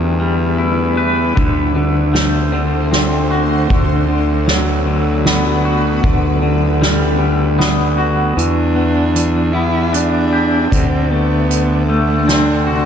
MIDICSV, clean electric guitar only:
0, 0, Header, 1, 2, 480
1, 0, Start_track
1, 0, Key_signature, 1, "minor"
1, 0, Tempo, 780234
1, 836, Time_signature, 3, 2, 24, 8
1, 7908, End_track
2, 0, Start_track
2, 0, Title_t, "Clean electric guitar"
2, 0, Program_c, 0, 27
2, 0, Note_on_c, 0, 52, 51
2, 0, Note_on_c, 0, 55, 46
2, 0, Note_on_c, 0, 62, 48
2, 114, Note_off_c, 0, 55, 0
2, 121, Note_on_c, 0, 55, 48
2, 359, Note_on_c, 0, 64, 55
2, 595, Note_off_c, 0, 52, 0
2, 599, Note_on_c, 0, 71, 60
2, 835, Note_on_c, 0, 50, 58
2, 837, Note_off_c, 0, 64, 0
2, 837, Note_off_c, 0, 71, 0
2, 838, Note_off_c, 0, 55, 0
2, 1079, Note_off_c, 0, 50, 0
2, 1081, Note_on_c, 0, 50, 55
2, 1316, Note_on_c, 0, 57, 56
2, 1550, Note_off_c, 0, 50, 0
2, 1552, Note_on_c, 0, 50, 55
2, 1791, Note_off_c, 0, 62, 0
2, 1794, Note_on_c, 0, 60, 58
2, 2035, Note_on_c, 0, 66, 62
2, 2270, Note_off_c, 0, 50, 0
2, 2273, Note_on_c, 0, 50, 63
2, 2274, Note_off_c, 0, 57, 0
2, 2274, Note_off_c, 0, 60, 0
2, 2504, Note_off_c, 0, 50, 0
2, 2511, Note_on_c, 0, 50, 52
2, 2750, Note_on_c, 0, 54, 53
2, 2985, Note_off_c, 0, 50, 0
2, 2992, Note_on_c, 0, 50, 51
2, 3237, Note_on_c, 0, 59, 64
2, 3474, Note_off_c, 0, 66, 0
2, 3476, Note_on_c, 0, 66, 63
2, 3709, Note_off_c, 0, 50, 0
2, 3711, Note_off_c, 0, 54, 0
2, 3714, Note_off_c, 0, 66, 0
2, 3716, Note_on_c, 0, 50, 65
2, 3944, Note_off_c, 0, 50, 0
2, 3952, Note_on_c, 0, 50, 53
2, 4194, Note_on_c, 0, 55, 57
2, 4414, Note_off_c, 0, 50, 0
2, 4421, Note_on_c, 0, 50, 56
2, 4665, Note_off_c, 0, 59, 0
2, 4667, Note_on_c, 0, 59, 65
2, 4909, Note_on_c, 0, 66, 64
2, 5147, Note_off_c, 0, 50, 0
2, 5150, Note_off_c, 0, 59, 0
2, 5150, Note_on_c, 0, 52, 52
2, 5151, Note_off_c, 0, 66, 0
2, 5153, Note_off_c, 0, 55, 0
2, 5384, Note_on_c, 0, 59, 45
2, 5625, Note_off_c, 0, 52, 0
2, 5632, Note_on_c, 0, 52, 46
2, 5863, Note_off_c, 0, 59, 0
2, 5871, Note_on_c, 0, 59, 52
2, 6108, Note_on_c, 0, 62, 56
2, 6352, Note_on_c, 0, 67, 53
2, 6591, Note_off_c, 0, 52, 0
2, 6592, Note_off_c, 0, 59, 0
2, 6593, Note_off_c, 0, 67, 0
2, 6593, Note_on_c, 0, 50, 60
2, 6837, Note_on_c, 0, 57, 51
2, 7072, Note_off_c, 0, 50, 0
2, 7075, Note_on_c, 0, 50, 57
2, 7308, Note_off_c, 0, 57, 0
2, 7316, Note_on_c, 0, 57, 57
2, 7551, Note_off_c, 0, 62, 0
2, 7554, Note_on_c, 0, 60, 59
2, 7793, Note_on_c, 0, 66, 62
2, 7908, Note_off_c, 0, 50, 0
2, 7908, Note_off_c, 0, 57, 0
2, 7908, Note_off_c, 0, 60, 0
2, 7908, Note_off_c, 0, 66, 0
2, 7908, End_track
0, 0, End_of_file